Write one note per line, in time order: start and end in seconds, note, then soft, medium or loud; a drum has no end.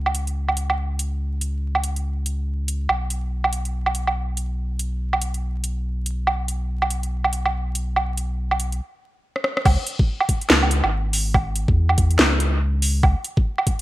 0.00 2.88 C#2 medium
0.06 low woodblock soft
0.15 closed hi-hat medium
0.27 closed hi-hat soft
0.48 low woodblock soft
0.57 closed hi-hat medium
0.70 low woodblock soft
0.99 closed hi-hat medium
1.41 closed hi-hat medium
1.75 low woodblock soft
1.84 closed hi-hat medium
1.96 closed hi-hat soft
2.26 closed hi-hat medium
2.68 closed hi-hat medium
2.89 8.81 B1 medium
2.89 low woodblock medium
3.10 closed hi-hat medium
3.44 low woodblock medium
3.53 closed hi-hat medium
3.65 closed hi-hat soft
3.86 low woodblock soft
3.95 closed hi-hat medium
4.07 low woodblock soft
4.37 closed hi-hat medium
4.79 closed hi-hat medium
5.13 low woodblock soft
5.22 closed hi-hat medium
5.34 closed hi-hat soft
5.64 closed hi-hat medium
6.06 closed hi-hat medium
6.27 low woodblock medium
6.48 closed hi-hat medium
6.82 low woodblock soft
6.90 closed hi-hat medium
7.03 closed hi-hat soft
7.24 low woodblock medium
7.33 closed hi-hat medium
7.46 low woodblock soft
7.75 closed hi-hat medium
7.96 low woodblock medium
8.17 closed hi-hat medium
8.51 low woodblock soft
8.60 closed hi-hat medium
8.72 closed hi-hat soft
9.36 cross-stick soft
9.44 cross-stick medium
9.57 cross-stick medium
9.65 9.77 C#2 loud
9.65 kick loud
9.65 crash loud
9.65 low woodblock medium
9.87 closed hi-hat medium
9.99 kick loud
10.20 low woodblock medium
10.29 kick medium
10.29 closed hi-hat medium
10.41 closed hi-hat soft
10.50 10.82 C#2 loud
10.50 snare loud
10.63 low woodblock medium
10.71 closed hi-hat medium
10.84 11.67 G#1 loud
10.84 low woodblock soft
11.13 open hi-hat loud
11.34 kick loud
11.34 low woodblock medium
11.55 closed hi-hat medium
11.68 11.97 E2 medium
11.68 kick loud
11.89 low woodblock medium
11.98 12.17 E2 medium
11.98 kick medium
11.98 closed hi-hat medium
12.11 closed hi-hat soft
12.19 13.02 C#2 medium
12.19 snare loud
12.40 closed hi-hat medium
12.82 open hi-hat loud
13.03 13.15 C#2 loud
13.03 kick loud
13.03 low woodblock medium
13.24 closed hi-hat medium
13.37 kick loud
13.58 low woodblock soft
13.67 kick medium
13.67 closed hi-hat medium